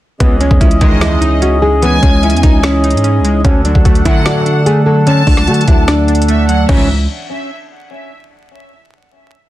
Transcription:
0.20 0.50 C#2 loud
0.20 1.22 E3 loud
0.20 0.39 B3 loud
0.20 3.41 C#4 medium
0.20 3.41 G#4 medium
0.20 3.41 D#5 loud
0.20 kick loud
0.20 closed hi-hat medium
0.40 1.42 G#3 medium
0.40 0.60 C#4 medium
0.40 closed hi-hat medium
0.51 0.60 E2 loud
0.51 kick medium
0.61 0.80 C#2 loud
0.61 1.41 C#4 medium
0.61 0.80 E4 medium
0.61 kick loud
0.61 closed hi-hat medium
0.71 closed hi-hat medium
0.81 1.99 C#2 loud
0.81 1.20 E2 loud
0.81 1.20 D#3 loud
0.81 1.20 G#3 loud
0.81 1.00 D#4 medium
0.81 1.82 D#5 medium
0.81 1.38 D#5 medium
0.81 kick medium
0.81 closed hi-hat loud
1.01 1.39 E4 medium
1.01 2.03 E4 loud
1.01 snare loud
1.01 closed hi-hat medium
1.21 2.23 D#4 medium
1.21 closed hi-hat medium
1.42 2.22 C#4 medium
1.42 1.61 F#4 medium
1.42 closed hi-hat medium
1.62 2.02 G#3 medium
1.62 1.81 G#4 medium
1.82 2.84 E3 loud
1.82 2.02 B3 loud
1.82 2.60 G#5 loud
1.82 closed hi-hat medium
2.02 2.35 C#2 loud
2.02 3.04 G#3 medium
2.02 2.22 C#4 medium
2.02 kick medium
2.02 closed hi-hat medium
2.23 3.03 C#4 medium
2.23 2.42 E4 medium
2.23 closed hi-hat soft
2.30 2.43 E2 loud
2.30 closed hi-hat medium
2.37 closed hi-hat medium
2.43 2.95 C#2 loud
2.43 2.83 D#4 medium
2.43 2.62 D#4 medium
2.43 kick medium
2.43 closed hi-hat loud
2.63 3.41 C#4 medium
2.63 3.44 E4 loud
2.63 snare loud
2.63 closed hi-hat medium
2.84 3.45 D#4 medium
2.84 closed hi-hat medium
2.91 3.21 G#2 loud
2.91 closed hi-hat medium
2.97 closed hi-hat medium
3.04 3.45 C#4 medium
3.04 closed hi-hat medium
3.19 3.43 C#2 loud
3.25 3.45 G#3 medium
3.25 closed hi-hat medium
3.45 3.74 D2 loud
3.45 4.46 D3 loud
3.45 3.64 C#4 loud
3.45 6.66 D4 medium
3.45 6.66 A4 medium
3.45 6.66 F#5 loud
3.45 kick loud
3.45 closed hi-hat medium
3.65 4.66 F#3 medium
3.65 3.84 D4 medium
3.65 closed hi-hat medium
3.75 3.85 D2 loud
3.75 kick medium
3.85 4.05 D2 loud
3.85 4.65 A3 medium
3.85 4.04 F#4 medium
3.85 kick loud
3.85 closed hi-hat medium
3.95 closed hi-hat medium
4.05 4.44 D2 loud
4.05 4.44 A2 loud
4.05 5.23 D3 loud
4.05 4.44 F#3 loud
4.05 4.45 D4 medium
4.05 4.25 E4 medium
4.05 4.63 F#5 medium
4.05 kick loud
4.05 closed hi-hat loud
4.26 4.64 F#4 medium
4.26 5.27 D5 loud
4.26 snare loud
4.26 closed hi-hat medium
4.46 5.47 D4 medium
4.46 closed hi-hat medium
4.66 5.46 A3 medium
4.66 4.85 G#4 medium
4.66 closed hi-hat medium
4.86 5.26 F#3 medium
4.86 5.06 A4 medium
5.07 6.08 D3 loud
5.07 5.26 C#4 loud
5.07 5.84 A5 loud
5.07 closed hi-hat medium
5.27 5.49 C#2 loud
5.27 6.28 F#3 medium
5.27 5.46 D4 medium
5.27 kick medium
5.27 open hi-hat medium
5.37 snare medium
5.47 5.67 D3 loud
5.47 6.27 A3 medium
5.47 5.67 F#4 medium
5.47 closed hi-hat medium
5.54 closed hi-hat medium
5.61 closed hi-hat medium
5.68 6.65 D2 loud
5.68 6.07 D4 medium
5.68 5.87 E4 medium
5.68 kick loud
5.68 closed hi-hat loud
5.88 6.65 D4 medium
5.88 6.69 D5 loud
5.88 snare loud
5.88 closed hi-hat medium
6.08 6.69 D4 medium
6.08 closed hi-hat soft
6.15 closed hi-hat medium
6.22 closed hi-hat medium
6.28 6.69 A3 medium
6.28 6.48 E5 medium
6.28 closed hi-hat medium
6.49 6.69 F#3 medium
6.49 6.68 F#5 medium
6.49 closed hi-hat medium
6.69 6.88 C#2 medium
6.69 7.07 C#2 loud
6.69 6.88 G#2 medium
6.69 6.88 E3 loud
6.69 6.88 E3 medium
6.69 6.88 G#3 medium
6.69 6.88 C#4 medium
6.69 6.88 D#4 medium
6.69 6.88 E4 medium
6.69 6.88 C#5 medium
6.69 6.88 E5 medium
6.69 kick loud
6.69 crash loud

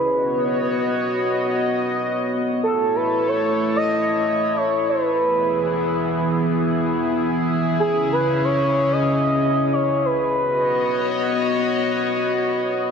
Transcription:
0.00 1.02 B4 loud
0.05 2.61 B3 medium
0.05 2.61 F#4 medium
0.05 2.61 C#5 medium
0.05 2.61 D#5 medium
2.63 5.19 A3 medium
2.63 5.19 E4 medium
2.63 2.97 A4 loud
2.63 5.19 A4 medium
2.63 5.19 C#5 medium
2.96 3.30 B4 loud
3.28 3.76 C#5 loud
3.76 4.58 D#5 loud
4.57 4.91 C#5 loud
4.89 6.18 B4 loud
5.21 7.77 E3 medium
5.21 7.77 B3 medium
5.21 10.34 E4 medium
5.21 10.34 G#4 medium
7.80 10.35 C#3 medium
7.80 10.35 C#4 medium
7.80 8.10 G#4 loud
8.12 8.46 B4 loud
8.44 8.94 C#5 loud
8.92 9.75 D#5 loud
9.73 10.07 C#5 loud
10.05 11.34 B4 loud
10.38 12.91 B3 medium
10.38 12.91 F#4 medium
10.38 12.91 C#5 medium
10.38 12.91 D#5 medium

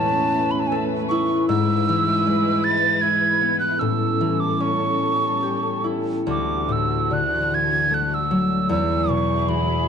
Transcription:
0.00 1.54 A2 medium
0.00 1.54 E3 soft
0.00 1.47 A3 medium
0.00 1.43 B3 soft
0.00 1.47 C#4 medium
0.00 2.84 C#4 soft
0.00 1.47 B4 medium
0.00 0.52 A5 medium
0.51 0.61 B5 medium
0.60 0.69 A5 medium
0.67 0.78 G#5 medium
0.72 1.55 A4 soft
0.76 0.84 A5 medium
1.09 3.03 E4 soft
1.09 1.46 C#6 medium
1.48 3.85 G#2 medium
1.48 3.78 G#3 medium
1.48 3.78 E4 medium
1.48 3.78 B4 medium
1.48 2.66 E6 medium
1.89 3.85 E3 soft
2.27 3.85 G#3 soft
2.64 3.03 A6 medium
3.01 5.64 E4 soft
3.01 3.59 G#6 medium
3.41 6.52 B3 soft
3.60 3.81 F#6 medium
3.79 6.33 A2 soft
3.79 6.26 G3 medium
3.79 6.26 C#4 soft
3.79 6.26 A4 medium
3.79 4.42 E6 medium
4.21 6.33 E3 soft
4.40 4.63 D6 medium
4.60 6.33 C#4 soft
4.60 5.86 C#6 medium
5.43 7.78 G4 soft
5.84 8.45 E4 soft
6.27 8.75 D2 soft
6.27 8.68 E3 soft
6.27 8.67 D4 soft
6.27 8.68 F#4 medium
6.31 6.74 D6 medium
6.69 7.16 A2 soft
6.69 7.15 E6 medium
7.11 8.75 D3 soft
7.11 7.56 F#6 medium
7.54 7.96 G#6 medium
7.91 9.88 A3 soft
7.91 8.16 F#6 medium
8.14 8.71 E6 medium
8.31 8.75 F#3 soft
8.69 9.88 E2 soft
8.69 9.88 F#3 medium
8.69 9.88 E4 medium
8.69 9.88 G#4 medium
8.69 9.12 E6 medium
9.09 9.88 B2 soft
9.09 9.50 C#6 medium
9.48 9.88 E3 soft
9.48 9.88 B5 medium

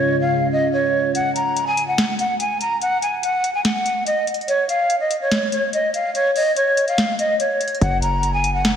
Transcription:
0.00 1.08 C#3 medium
0.00 1.11 C#3 medium
0.00 1.10 F3 medium
0.00 1.11 G#3 medium
0.00 1.12 C#4 medium
0.00 1.11 F4 medium
0.00 1.13 F4 medium
0.00 0.19 C#5 medium
0.00 1.11 C#5 medium
0.21 0.50 F5 medium
0.52 0.71 D#5 medium
0.73 1.12 C#5 medium
1.15 1.34 F#5 medium
1.15 closed hi-hat medium
1.35 1.65 A#5 medium
1.35 closed hi-hat medium
1.57 closed hi-hat medium
1.67 1.86 G#5 medium
1.77 closed hi-hat medium
1.88 2.17 F#5 medium
1.98 snare loud
1.98 closed hi-hat medium
2.19 2.38 F#5 medium
2.19 closed hi-hat medium
2.40 2.59 G#5 medium
2.40 closed hi-hat medium
2.61 2.80 A#5 medium
2.61 closed hi-hat medium
2.81 3.00 F#5 loud
2.81 closed hi-hat medium
3.02 3.21 G#5 medium
3.02 closed hi-hat medium
3.23 3.52 F#5 medium
3.23 closed hi-hat medium
3.44 closed hi-hat medium
3.54 3.64 G#5 medium
3.65 4.04 F#5 medium
3.65 snare loud
3.65 closed hi-hat medium
3.86 closed hi-hat medium
4.06 4.25 D#5 medium
4.06 closed hi-hat medium
4.27 closed hi-hat medium
4.34 closed hi-hat medium
4.41 closed hi-hat soft
4.48 4.67 C#5 medium
4.48 closed hi-hat medium
4.69 4.98 F5 medium
4.69 closed hi-hat medium
4.90 closed hi-hat medium
5.00 5.19 D#5 medium
5.11 closed hi-hat medium
5.21 5.51 C#5 medium
5.31 snare loud
5.31 closed hi-hat medium
5.52 5.71 C#5 medium
5.52 closed hi-hat medium
5.73 5.92 D#5 medium
5.73 closed hi-hat medium
5.94 6.13 F5 medium
5.94 closed hi-hat medium
6.15 6.34 C#5 loud
6.15 closed hi-hat medium
6.36 6.55 D#5 medium
6.36 open hi-hat medium
6.56 6.86 C#5 medium
6.56 closed hi-hat medium
6.77 closed hi-hat medium
6.88 7.17 F5 medium
6.88 closed hi-hat soft
6.98 snare loud
6.98 closed hi-hat medium
7.19 7.38 D#5 medium
7.19 closed hi-hat medium
7.40 7.79 C#5 medium
7.40 closed hi-hat medium
7.61 closed hi-hat medium
7.68 closed hi-hat medium
7.75 closed hi-hat soft
7.81 8.77 F#1 loud
7.81 8.77 F#3 medium
7.81 8.77 F#4 medium
7.81 8.77 A#4 medium
7.81 8.77 C#5 medium
7.81 8.00 F#5 medium
7.81 kick loud
7.81 closed hi-hat medium
8.02 8.32 A#5 medium
8.02 closed hi-hat medium
8.23 closed hi-hat medium
8.34 8.53 G#5 medium
8.44 closed hi-hat medium
8.54 8.77 F#5 medium
8.65 snare loud
8.65 closed hi-hat medium

